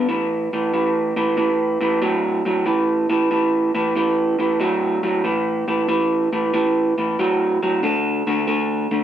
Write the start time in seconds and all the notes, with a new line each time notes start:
0.09 A2 E3
0.53 A2 E3
0.74 A2 E3
1.16 A2 E3
1.37 A2 E3
1.81 A2 E3
2.02 A2 F#3
2.45 A2 F#3
2.66 A2 E3
3.09 A2 E3
3.31 A2 E3
3.75 A2 E3
3.96 A2 E3
4.39 A2 E3
4.60 A2 F#3
5.03 A2 F#3
5.24 A2 E3
5.68 A2 E3
5.88 A2 E3
6.33 A2 E3
6.54 A2 E3
6.98 A2 E3
7.19 A2 F#3
7.63 A2 F#3
7.83 D3 A3
8.27 D3 A3
8.47 D3 A3
8.91 D3 A3